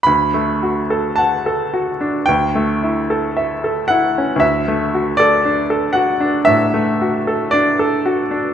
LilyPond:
\new Staff \with { instrumentName = "Grand piano" } { \time 4/4 \key d \major \tempo 4 = 57 << { b''4 a''4 g''4. fis''8 | e''8. d''8. fis''8 e''4 d''4 | } \\ { d,16 a16 fis'16 a'16 fis''16 a'16 fis'16 d'16 d,16 a16 e'16 a'16 e''16 a'16 e'16 cis'16 | d,16 a16 fis'16 a'16 d'16 a'16 fis'16 d'16 a,16 a16 fis'16 a'16 d'16 a'16 fis'16 d'16 | } >> }